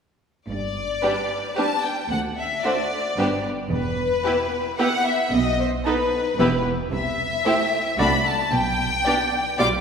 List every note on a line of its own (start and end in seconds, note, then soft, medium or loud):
0.49 0.92 G1 soft
0.49 0.92 G2 soft
0.49 1.53 D5 medium
1.02 1.12 G3 soft
1.02 1.12 D4 soft
1.02 1.11 G4 soft
1.02 1.10 B4 soft
1.56 1.66 G3 soft
1.56 1.66 D4 soft
1.56 1.64 G4 soft
1.56 1.64 B4 soft
1.56 1.84 A5 medium
1.84 2.11 G5 soft
2.10 2.53 D2 soft
2.10 2.18 F#5 medium
2.37 2.64 E5 medium
2.64 2.74 A3 soft
2.64 2.74 D4 soft
2.64 2.72 F#4 soft
2.64 2.73 C5 soft
2.64 3.45 D5 medium
3.17 3.60 G1 soft
3.17 3.60 G2 soft
3.17 3.27 B3 soft
3.17 3.27 D4 soft
3.17 3.27 G4 soft
3.17 3.27 B4 soft
3.71 4.14 E1 medium
3.71 4.14 E2 medium
3.71 4.75 B4 medium
4.25 4.34 B3 soft
4.25 4.34 E4 soft
4.25 4.33 G4 soft
4.25 4.33 B4 soft
4.78 4.87 B3 soft
4.78 4.87 E4 soft
4.78 4.87 G4 soft
4.78 4.87 B4 soft
4.78 5.05 F#5 medium
5.05 5.32 E5 medium
5.31 5.75 B1 medium
5.31 5.74 B2 medium
5.31 5.59 D#5 medium
5.60 5.68 C5 medium
5.85 5.95 B3 soft
5.85 5.94 D#4 soft
5.85 5.94 A4 soft
5.85 6.64 B4 medium
5.85 5.94 B4 soft
6.39 6.81 E1 medium
6.39 6.81 E2 medium
6.39 6.48 B3 soft
6.39 6.47 E4 soft
6.39 6.48 G4 soft
6.39 6.48 B4 soft
6.92 7.34 C2 medium
6.92 7.34 C3 medium
6.92 7.95 E5 medium
7.45 7.54 A3 soft
7.45 7.54 E4 soft
7.45 7.53 G4 soft
7.45 7.54 C5 soft
7.99 8.41 C2 medium
7.99 8.41 C3 medium
7.99 8.09 A3 soft
7.99 8.08 D4 soft
7.99 8.07 F#4 soft
7.99 8.07 D5 soft
7.99 8.25 B5 medium
8.25 8.52 A5 medium
8.52 8.94 B1 medium
8.52 8.94 B2 medium
8.52 9.59 G5 medium
9.06 9.15 B3 soft
9.06 9.15 D4 soft
9.06 9.14 G4 soft
9.06 9.14 D5 soft
9.58 9.81 B1 medium
9.58 9.81 B2 medium
9.58 9.68 G3 soft
9.58 9.68 F4 soft
9.58 9.66 G4 soft
9.58 9.66 D5 soft
9.58 9.66 D6 medium